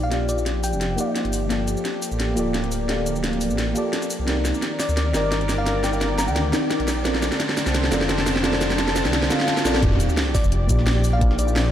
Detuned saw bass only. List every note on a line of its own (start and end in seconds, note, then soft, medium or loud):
0.00 0.74 A#1 medium
0.73 0.97 F1 medium
1.25 1.49 G1 loud
1.50 1.75 G1 loud
2.12 2.36 A1 medium
2.37 3.52 D1 medium
3.50 3.74 A1 medium
4.20 4.27 C2 medium
4.28 4.53 C2 loud
4.89 5.13 D2 medium
5.14 6.29 G1 loud
6.28 6.52 D2 loud
6.80 7.04 A#1 loud
7.05 7.30 A#1 loud
7.66 7.91 C2 medium
7.92 9.07 F1 loud
9.05 9.29 C2 medium
9.65 9.81 A#1 medium
9.83 10.08 D#1 loud
10.44 10.68 F1 medium
10.69 11.72 A#1 loud